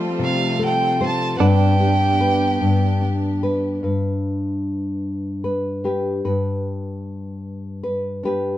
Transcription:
Already playing: F3 G3 A3 C4 F4 A4 C5
0.19 C3
0.24 F5
0.59 A4
0.65 G5
1.01 C5
1.06 A5
1.38 G2 B3 D4 G4 B4 F#5
1.47 G5
1.80 G4
2.21 B4
2.61 G2
3.01 D4
3.43 B4
3.83 G2 B4
5.44 B4
5.84 D4 G4 B4
6.25 G2 B4
7.83 B4
8.23 D4 G4 B4

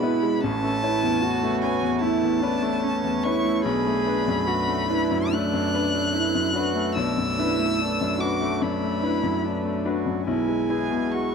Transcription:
Already playing: B2 G#3 B3 E4 B4 B5
0.02 B3 E4 B4
0.23 G#3
0.42 A1 A3 C#4 B4 C#5 A5
0.64 A3
0.83 C#4 E4 B4
1.03 E2
1.23 F#4
1.43 A3
1.62 C#4 B4 G#5
1.82 E2
2.01 A3 E4 A5
2.23 E2
2.42 C#4 D4 B4
2.63 A3
2.83 C#4
3.04 E2
3.24 C#4 E4 B4 C#6
3.45 A3
3.64 B1 A3 D4 G#4 B4 B5
3.87 A3
4.07 D4 B4
4.28 F#2
4.47 F#4
4.69 A3
4.89 D4 E4 B4
5.11 F#2
5.32 A3 D4 F#6
5.54 F#2
5.74 D4 B4
5.95 A3
6.14 E4
6.35 F#2
6.55 D4 F#4 B4
6.75 A3
6.96 B1 A3 D4 B4 E6
7.18 F#2
7.39 D4 E4 B4
7.59 A3
7.79 D4
8.01 F#2
8.19 D4 F#4 B4 D6
8.41 A3
8.62 F#2 D4 B5
8.83 A3
9.03 D4 E4 B4
9.23 F#2
9.44 D4
9.65 A3
9.85 D4 F#4 B4
10.06 F#2
10.26 B1 G#3 E4 B4 G#5
10.49 G#3
10.70 E4 G#4 B4
10.91 B2
11.12 F#4 C#6

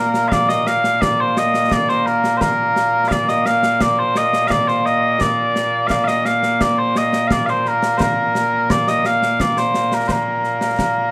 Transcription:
Already playing: A#2 A#3 A#4
0.14 snare
0.28 F5, concert bass drum, snare
0.32 D5
0.49 D#5, snare
0.67 F5, snare
0.84 snare
1.01 D5, concert bass drum, snare
1.20 C5
1.37 D#5, snare
1.54 snare
1.71 D5, concert bass drum, snare
1.89 C5, snare
2.06 A#4, snare
2.24 snare
2.37 A#4 C5
2.41 concert bass drum, snare
2.76 snare
3.08 D5 F5, concert bass drum, snare
3.28 D#5, snare
3.46 F5, snare
3.63 snare
3.81 D5, concert bass drum, snare
3.99 C5
4.16 D#5, snare
4.33 snare
4.47 D5 F5, concert bass drum, snare
4.68 C5, snare
4.86 D#5, snare
5.21 D5, concert bass drum, snare
5.56 snare
5.87 F5, concert bass drum, snare
5.91 D5
6.04 D#5 F5, snare
6.25 F5, snare
6.43 snare
6.61 D5, concert bass drum, snare
6.78 C5
6.96 D#5, snare
7.13 snare
7.27 F5, concert bass drum, snare
7.32 D5
7.46 C5 F5, snare
7.65 A#4, snare
7.83 snare
7.97 A#4 C5, concert bass drum, snare
8.35 snare
8.70 D5, concert bass drum, snare
8.88 D#5, snare
9.05 F5, snare
9.23 snare
9.40 D5, concert bass drum, snare
9.57 C5, snare
9.74 snare
9.92 A#4, snare
10.08 A#4 C5, concert bass drum, snare
10.44 snare
10.61 snare
10.79 concert bass drum, snare

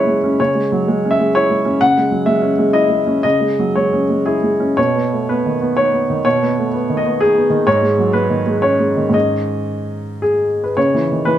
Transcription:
Already playing: C#3 F#3 G#3 C#4 E4 B4 C#5
0.07 G#3
0.24 C#4
0.40 C#3 C#5
0.55 G#3
0.72 F#3
0.88 G#3
1.05 C#4
1.11 E5
1.20 G#3
1.35 E4 C#5
1.50 G#3
1.65 C#4
1.81 C#3 F#5
1.97 G#3
2.11 F#3
2.26 G#3 E5
2.42 C#4
2.59 G#3
2.73 E4 D#5
2.89 G#3
3.06 C#4
3.23 C#3 D#5
3.40 G#3
3.59 F#3
3.76 G#3 C#5
3.93 C#4
4.10 G#3
4.26 E4 G#4
4.43 G#3
4.60 C#4
4.77 B2 C#5
4.95 B3
5.13 A3
5.29 B3 B4
5.46 D#3
5.62 B3
5.77 D#4 C#5
5.93 B3
6.10 D#3
6.25 B2 C#5
6.42 B3
6.58 A3
6.74 B3
6.90 D#3
6.97 D#5
7.06 B3
7.21 D#4 G#4
7.37 B3
7.50 D#3
7.67 G#2 C#5
7.82 G#3
7.98 F#3
8.13 G#3 B4
8.30 D#3
8.47 G#3
8.62 C#4 C#5
8.79 G#3
8.97 D#3
9.09 G#2 D#3 C#4 G#4
9.14 D#5
10.22 G#4
10.64 B4
10.77 C#3 C#5
10.94 E3
11.12 D#3
11.25 E3 B4

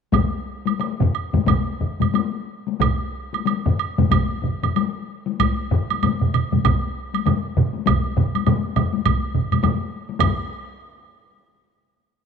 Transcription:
0.12 taiko, taiko low-mid, taiko mid, taiko high, high woodblock
0.66 taiko high, high woodblock
0.80 taiko high, high woodblock
1.00 taiko low-mid, taiko mid
1.15 high woodblock
1.33 taiko low-mid, taiko mid, taiko high
1.47 taiko, taiko low-mid, taiko mid, taiko high, high woodblock
1.81 taiko low-mid, taiko mid
2.00 taiko low-mid, taiko mid, taiko high, high woodblock
2.14 taiko high, high woodblock
2.67 taiko high
2.80 taiko, taiko low-mid, taiko mid, taiko high, high woodblock
3.33 taiko high, high woodblock
3.45 taiko high, high woodblock
3.66 taiko low-mid, taiko mid
3.79 high woodblock
3.98 taiko low-mid, taiko mid, taiko high
4.11 taiko, taiko low-mid, taiko mid, taiko high, high woodblock
4.44 taiko low-mid, taiko mid
4.63 taiko low-mid, taiko mid, taiko high, high woodblock
4.76 taiko high, high woodblock
5.27 taiko high
5.39 taiko, taiko high, high woodblock
5.71 taiko low-mid, taiko mid
5.90 taiko high, high woodblock
6.03 taiko low-mid, taiko mid, taiko high, high woodblock
6.21 taiko low-mid, taiko mid
6.34 taiko low-mid, taiko mid, high woodblock
6.52 taiko low-mid, taiko mid, taiko high
6.65 taiko, taiko low-mid, taiko mid, taiko high, high woodblock
7.14 taiko high, high woodblock
7.26 taiko low-mid, taiko mid, taiko high, high woodblock
7.57 taiko low-mid, taiko mid
7.74 taiko high
7.86 taiko, taiko low-mid, taiko mid, taiko high, high woodblock
8.17 taiko low-mid, taiko mid
8.35 taiko high, high woodblock
8.47 taiko low-mid, taiko mid, taiko high, high woodblock
8.76 taiko low-mid, taiko mid, taiko high, high woodblock
8.94 taiko high
9.05 taiko, taiko low-mid, taiko mid, taiko high, high woodblock
9.35 taiko low-mid, taiko mid
9.52 taiko low-mid, taiko mid, taiko high, high woodblock
9.63 taiko low-mid, taiko mid, taiko high, high woodblock
10.09 taiko high
10.20 taiko, taiko low-mid, taiko mid, taiko high, high woodblock

